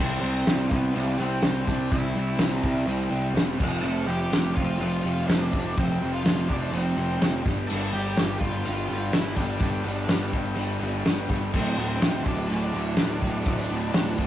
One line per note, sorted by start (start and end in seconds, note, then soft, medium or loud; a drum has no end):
0.00 0.19 C2 loud
0.00 0.21 C3 medium
0.00 0.22 G3 loud
0.00 0.20 C4 medium
0.00 0.22 C4 loud
0.00 0.20 C5 medium
0.20 0.42 C2 medium
0.20 0.46 C3 medium
0.20 0.47 G3 loud
0.20 0.67 C4 medium
0.20 0.47 C4 loud
0.20 0.67 C5 medium
0.20 open hi-hat medium
0.46 0.68 C2 medium
0.46 0.68 C3 medium
0.46 0.70 G3 loud
0.46 0.71 C4 medium
0.46 snare loud
0.46 open hi-hat medium
0.68 0.94 C3 medium
0.68 0.95 G3 medium
0.68 1.14 B3 medium
0.68 0.96 C4 loud
0.68 1.14 B4 medium
0.68 kick medium
0.68 open hi-hat medium
0.72 0.92 C2 medium
0.95 1.16 C2 loud
0.95 1.18 C3 loud
0.95 1.19 G3 loud
0.95 1.20 C4 loud
0.95 open hi-hat loud
1.18 1.40 C2 medium
1.18 1.43 C3 medium
1.18 1.44 G3 medium
1.18 1.63 C4 medium
1.18 1.46 C4 loud
1.18 1.68 C5 medium
1.18 open hi-hat medium
1.42 1.64 C2 medium
1.42 1.66 C3 loud
1.42 1.68 G3 loud
1.42 snare loud
1.42 open hi-hat medium
1.46 1.68 C4 loud
1.67 1.88 C2 medium
1.67 1.90 C3 medium
1.67 1.91 G3 medium
1.67 1.92 C4 medium
1.67 1.90 D4 medium
1.67 1.92 D5 medium
1.67 kick medium
1.67 snare soft
1.67 open hi-hat medium
1.91 2.12 C2 medium
1.91 2.13 C3 medium
1.91 2.15 G3 loud
1.91 2.16 C4 loud
1.91 2.84 E4 medium
1.91 2.57 E5 loud
1.91 kick loud
1.91 open hi-hat medium
2.14 2.36 C2 medium
2.14 2.38 C3 medium
2.14 2.39 G3 loud
2.14 2.39 C4 loud
2.14 open hi-hat medium
2.38 2.59 C2 medium
2.38 2.60 C3 medium
2.38 2.61 G3 medium
2.38 2.62 C4 loud
2.38 snare loud
2.38 open hi-hat medium
2.57 2.83 D5 loud
2.61 2.84 C2 loud
2.61 2.83 C3 medium
2.61 2.85 G3 loud
2.61 2.86 C4 loud
2.61 kick medium
2.61 open hi-hat medium
2.85 3.08 C2 loud
2.85 3.09 C3 loud
2.85 3.10 G3 loud
2.85 3.11 C4 loud
2.85 open hi-hat medium
3.10 3.31 C2 medium
3.10 3.33 C3 medium
3.10 3.34 G3 medium
3.10 3.35 C4 medium
3.10 open hi-hat medium
3.34 3.55 E1 medium
3.34 3.57 C3 loud
3.34 3.58 G3 medium
3.34 3.59 C4 loud
3.34 snare loud
3.34 open hi-hat medium
3.57 3.81 F1 medium
3.57 3.82 F2 medium
3.57 3.82 C3 medium
3.57 3.84 F3 loud
3.57 kick loud
3.57 crash loud
3.81 4.04 F1 loud
3.81 4.05 F2 medium
3.81 4.05 C3 loud
3.81 4.07 F3 loud
3.81 4.05 A4 medium
3.81 4.07 A5 loud
4.05 4.28 F1 loud
4.05 4.30 F2 medium
4.05 4.30 C3 medium
4.05 4.32 F3 loud
4.05 4.52 G4 medium
4.05 4.57 G5 medium
4.05 open hi-hat medium
4.30 4.53 F1 medium
4.30 4.54 F2 medium
4.30 4.55 C3 loud
4.30 4.56 F3 loud
4.30 snare loud
4.30 open hi-hat medium
4.55 4.77 F1 loud
4.55 4.78 F2 medium
4.55 4.79 C3 medium
4.55 4.79 F3 medium
4.55 4.78 F4 medium
4.55 4.77 F5 medium
4.55 kick medium
4.55 open hi-hat medium
4.79 5.01 F1 loud
4.79 5.02 F2 loud
4.79 5.02 C3 loud
4.79 5.03 F3 loud
4.79 5.25 F4 medium
4.79 5.27 F5 loud
4.79 open hi-hat medium
5.03 5.25 F1 medium
5.03 5.26 F2 medium
5.03 5.27 C3 medium
5.03 5.27 F3 loud
5.03 open hi-hat medium
5.26 5.49 F1 loud
5.26 5.50 F2 loud
5.26 5.51 C3 loud
5.26 5.52 F3 loud
5.26 5.72 D4 medium
5.26 5.77 D5 medium
5.26 snare loud
5.26 open hi-hat medium
5.51 5.74 F1 medium
5.51 5.75 F2 medium
5.51 5.76 C3 medium
5.51 5.76 F3 medium
5.51 kick medium
5.51 open hi-hat medium
5.76 5.97 F1 medium
5.76 5.99 F2 loud
5.76 6.00 C3 loud
5.76 6.01 F3 loud
5.76 6.11 C4 medium
5.76 6.14 C5 medium
5.76 kick loud
5.76 open hi-hat medium
6.00 6.23 F1 medium
6.00 6.22 F2 loud
6.00 6.22 C3 medium
6.00 6.23 F3 loud
6.00 open hi-hat medium
6.14 6.47 F4 medium
6.14 6.51 F5 loud
6.23 6.46 F1 medium
6.23 6.47 F2 loud
6.23 6.48 C3 medium
6.23 6.48 F3 loud
6.23 snare loud
6.23 open hi-hat medium
6.48 6.70 F1 medium
6.48 6.70 F2 medium
6.48 6.70 C3 medium
6.48 6.71 F3 medium
6.48 6.71 D4 medium
6.48 6.74 D5 medium
6.48 kick medium
6.48 open hi-hat medium
6.71 6.93 F1 loud
6.71 6.95 F2 loud
6.71 6.96 C3 loud
6.71 6.96 F3 loud
6.71 7.40 C4 medium
6.71 7.41 C5 medium
6.71 open hi-hat medium
6.96 7.17 F1 medium
6.96 7.17 F2 medium
6.96 7.18 C3 medium
6.96 7.19 F3 medium
6.96 open hi-hat medium
7.18 7.42 F1 medium
7.18 7.42 F2 medium
7.18 7.42 C3 loud
7.18 7.43 F3 loud
7.18 snare loud
7.18 open hi-hat medium
7.43 7.66 G1 medium
7.43 7.68 G2 medium
7.43 7.68 D3 loud
7.43 7.69 G3 loud
7.43 kick loud
7.43 snare soft
7.43 open hi-hat medium
7.67 7.92 G2 medium
7.67 7.93 D3 loud
7.67 7.94 G3 loud
7.67 7.91 A4 medium
7.67 7.92 A5 loud
7.67 crash loud
7.71 7.91 G1 medium
7.92 8.14 G1 loud
7.92 8.16 G2 medium
7.92 8.16 D3 medium
7.92 8.17 G3 loud
7.92 8.38 G4 medium
7.92 8.37 G5 medium
7.92 open hi-hat medium
8.16 8.38 G1 medium
8.16 8.40 G2 loud
8.16 8.40 D3 medium
8.16 8.41 G3 loud
8.16 snare loud
8.16 open hi-hat medium
8.39 8.62 G1 medium
8.39 8.63 G2 medium
8.39 8.64 D3 loud
8.39 8.65 G3 medium
8.39 8.62 F4 medium
8.39 8.64 F5 medium
8.39 kick medium
8.39 open hi-hat medium
8.64 8.87 G1 loud
8.64 8.86 G2 loud
8.64 8.87 D3 loud
8.64 8.88 G3 loud
8.64 9.10 F4 medium
8.64 9.10 F5 medium
8.64 open hi-hat loud
8.87 9.10 G1 medium
8.87 9.10 G2 medium
8.87 9.10 D3 medium
8.87 9.11 G3 medium
8.87 open hi-hat medium
9.11 9.34 G1 medium
9.11 9.35 G2 loud
9.11 9.35 D3 loud
9.11 9.36 G3 loud
9.11 9.36 E4 medium
9.11 9.38 E5 medium
9.11 snare loud
9.11 open hi-hat medium
9.35 9.58 G1 medium
9.35 9.58 G2 medium
9.35 9.59 D3 medium
9.35 9.60 G3 medium
9.35 10.28 D4 medium
9.35 10.28 D5 medium
9.35 kick medium
9.35 snare soft
9.35 open hi-hat medium
9.59 9.81 G1 loud
9.59 9.81 G2 loud
9.59 9.81 D3 loud
9.59 9.82 G3 loud
9.59 kick loud
9.59 open hi-hat medium
9.82 10.06 G1 medium
9.82 10.07 G2 medium
9.82 10.07 D3 medium
9.82 10.08 G3 loud
9.82 open hi-hat medium
9.86 10.09 G2 medium
9.86 10.09 D3 medium
9.86 10.09 G3 loud
10.08 10.29 G1 medium
10.08 10.31 G2 loud
10.08 10.31 D3 loud
10.08 10.32 G3 loud
10.08 snare loud
10.08 open hi-hat medium
10.32 10.54 G1 medium
10.32 10.53 G2 medium
10.32 10.54 D3 medium
10.32 10.55 G3 medium
10.32 kick medium
10.32 open hi-hat medium
10.55 10.77 G1 loud
10.55 10.79 G2 loud
10.55 10.79 D3 loud
10.55 10.80 G3 loud
10.55 open hi-hat loud
10.80 11.02 G1 medium
10.80 11.02 G2 medium
10.80 11.03 D3 medium
10.80 11.04 G3 medium
10.80 open hi-hat medium
11.04 11.26 G1 medium
11.04 11.25 G2 loud
11.04 11.26 D3 loud
11.04 11.26 G3 loud
11.04 snare loud
11.04 open hi-hat medium
11.27 11.50 G1 medium
11.27 11.50 G2 medium
11.27 11.51 D3 medium
11.27 11.51 G3 loud
11.27 kick medium
11.27 snare soft
11.27 open hi-hat medium
11.51 11.75 D1 medium
11.51 11.76 D2 loud
11.51 11.76 A2 loud
11.51 11.77 D3 loud
11.51 11.76 C4 medium
11.51 kick loud
11.51 crash loud
11.56 11.78 C5 medium
11.76 11.97 D1 loud
11.76 11.99 D2 medium
11.76 11.99 A2 medium
11.76 12.01 D3 medium
11.76 12.22 C4 medium
11.76 12.28 C5 loud
11.76 open hi-hat medium
12.00 12.21 D1 medium
12.00 12.25 D2 loud
12.00 12.25 A2 loud
12.00 12.26 D3 loud
12.00 snare loud
12.00 open hi-hat medium
12.25 12.47 D1 loud
12.25 12.47 D2 medium
12.25 12.47 A2 medium
12.25 12.48 D3 medium
12.25 12.46 D4 medium
12.25 12.49 D5 loud
12.25 kick medium
12.25 open hi-hat medium
12.48 12.71 D1 loud
12.48 12.72 D2 loud
12.48 12.72 A2 loud
12.48 12.73 D3 loud
12.48 14.27 D4 medium
12.48 open hi-hat medium
12.52 14.27 D5 loud
12.73 12.95 D1 loud
12.73 12.95 D2 medium
12.73 12.96 A2 loud
12.73 12.97 D3 medium
12.73 open hi-hat medium
12.96 13.19 D1 medium
12.96 13.20 D2 loud
12.96 13.20 A2 loud
12.96 13.22 D3 loud
12.96 snare loud
12.96 open hi-hat medium
13.21 13.43 D1 medium
13.21 13.43 D2 medium
13.21 13.44 A2 medium
13.21 13.45 D3 medium
13.21 kick medium
13.21 open hi-hat medium
13.45 13.67 D1 loud
13.45 13.68 D2 loud
13.45 13.69 A2 loud
13.45 13.69 D3 loud
13.45 kick loud
13.45 open hi-hat medium
13.69 13.91 D1 medium
13.69 13.91 D2 medium
13.69 13.93 A2 medium
13.69 13.93 D3 loud
13.69 open hi-hat medium
13.92 14.14 D1 medium
13.92 14.15 D2 medium
13.92 14.17 A2 medium
13.92 14.18 D3 loud
13.92 snare loud
13.92 open hi-hat medium
14.17 14.27 D1 loud
14.17 14.27 D2 medium
14.17 14.27 A2 medium
14.17 14.27 D3 medium
14.17 kick medium
14.17 open hi-hat medium